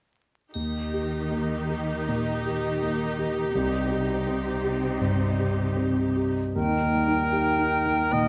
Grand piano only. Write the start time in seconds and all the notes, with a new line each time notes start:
0.55 D#2
0.94 G4
1.31 A#3
1.70 G4
2.08 A#2
2.46 G4
2.83 A#3
3.19 G4
3.55 C2
3.91 G4
4.27 C4
4.64 G4
5.01 G2
5.39 G4
5.76 C4
6.16 G4
6.56 D#2
6.82 A#3
7.08 D#4
7.32 G4
7.59 D#4
7.86 A#3
8.13 A#2